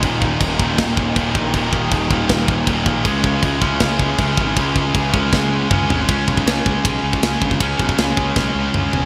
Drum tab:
CC |x---x---x---x---|x---x---x---x---|x---x---x---x---|x---x-----------|
RD |----------------|----------------|----------------|----------------|
SD |--------o-------|--------o-------|--------o-------|--------o-------|
T2 |----------------|----------------|----------------|------------o---|
FT |----------------|----------------|----------------|--------------o-|
BD |o-o-o-o-o-o-o-o-|o-o-o-o-o-o-o-o-|o-o-o-o-o-o-o-o-|o-o-o-o-o---o---|

CC |----------------|----------------|
RD |b---b---b---b---|b---b-----------|
SD |----o-------o---|----o---o-------|
T2 |----------------|------------o---|
FT |----------------|--------------o-|
BD |o-oo--o-o--o--oo|o-oo--o-o-------|